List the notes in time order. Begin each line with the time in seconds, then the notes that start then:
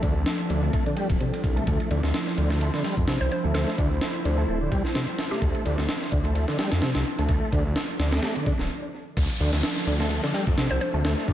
Already playing: F3 C4 D4 A4
0.03 D2 D3, kick, ride
0.16 D2
0.26 snare, ride
0.50 D2 D3, ride
0.63 A3
0.73 A3, kick, ride
0.86 D3, ride
0.97 G3, ride
1.10 D1, kick, ride
1.20 C3, ride
1.34 ride
1.44 C2, kick, ride
1.56 A3, ride
1.67 D2 E4 C5, kick, ride
1.80 ride
1.90 D2 D3, ride
2.03 D2, snare
2.14 snare, ride
2.27 snare
2.38 D2 D3, ride
2.50 A3, snare
2.61 A3, ride
2.74 D3, snare
2.84 G3, snare, open hi-hat
2.97 F2, kick
3.07 C3, snare, ride
3.21 C2 C5
3.31 C5, ride
3.44 D2 A3
3.54 D2 A4, snare, ride
3.68 snare
3.78 D2 D3, kick, ride
3.91 D2
4.01 snare, ride
4.25 D2 D3, ride
4.38 A3
4.48 D1 A3
4.61 D3
4.71 C2 G3, kick, ride
4.85 snare
4.95 C3, snare, ride
5.19 snare, ride
5.31 A3 G4, snare
5.42 D2, kick, ride
5.55 ride
5.65 D2 D3, ride
5.78 D2, snare
5.89 snare, ride
6.02 snare
6.12 D2 D3, kick, ride
6.25 A3, ride
6.35 A3, ride
6.48 D3, snare
6.59 G3, snare, ride
6.72 F2, snare, ride
6.82 C3, snare, ride
6.95 C2, snare, ride
7.05 ride
7.19 D2 A3, ride
7.29 D2, kick, ride
7.52 D2 D3, kick, ride
7.65 D2
7.76 snare, ride
7.99 D2 D3, snare, ride
8.12 A3, snare, ride
8.23 A3, snare, ride
8.36 D3, ride
8.46 D3, kick, ride
8.59 D1, snare
9.17 D2 F3 C4 D4 A4, kick, crash, ride, downlifter
9.30 ride
9.40 D2 D3, ride
9.53 D2, snare
9.63 snare, ride
9.76 snare
9.87 D2 D3, ride
10.00 A3, snare
10.10 A3, ride
10.23 D3, snare
10.34 G3, snare, open hi-hat
10.47 F2, kick
10.57 C3, snare, ride
10.70 C2 C5
10.81 C5, ride
10.94 D2 A3
11.04 D2, snare, ride
11.18 snare
11.28 D2 D3, kick, ride